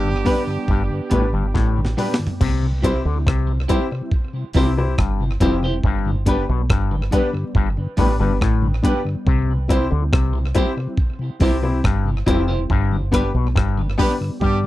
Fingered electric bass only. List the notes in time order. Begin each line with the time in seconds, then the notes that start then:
Already playing: G1
0.68 G1
1.12 A1
1.34 G1
1.55 A1
2.41 C2
3.05 D2
3.27 C2
4.55 C2
4.98 G1
5.41 F1
5.84 G1
6.49 B1
6.70 G1
7.55 G1
7.98 A1
8.20 G1
8.41 A1
9.27 C2
9.92 D2
10.13 C2
11.41 C2
11.84 G1
12.27 F1
12.70 G1
13.34 B1
13.57 G1
14.41 G2